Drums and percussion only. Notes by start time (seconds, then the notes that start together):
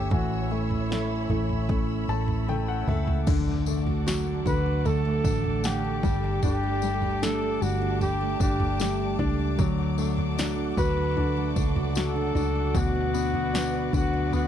0.11 kick, floor tom
0.71 floor tom
0.92 snare
1.30 floor tom
1.49 floor tom
1.69 kick, floor tom
2.28 floor tom
2.48 high tom
2.88 mid tom
3.07 floor tom
3.27 kick, floor tom, crash, tambourine
3.66 tambourine
3.87 floor tom
4.08 snare, tambourine
4.46 kick, tambourine
4.85 floor tom, tambourine
5.24 kick, tambourine
5.44 floor tom
5.64 snare, tambourine
6.03 kick, floor tom, tambourine
6.43 floor tom, tambourine
6.82 tambourine
7.02 floor tom
7.23 snare, tambourine
7.62 tambourine
8.01 floor tom, tambourine
8.40 kick, tambourine
8.60 floor tom
8.80 snare, tambourine
9.19 kick, floor tom
9.58 kick, floor tom, tambourine
9.98 tambourine
10.18 floor tom
10.39 snare, tambourine
10.77 kick, tambourine
11.17 floor tom
11.56 kick, tambourine
11.76 floor tom
11.95 snare, tambourine
12.35 floor tom, tambourine
12.74 kick, floor tom, tambourine
13.14 tambourine
13.34 floor tom
13.55 snare, tambourine
13.93 kick, tambourine
14.32 floor tom, tambourine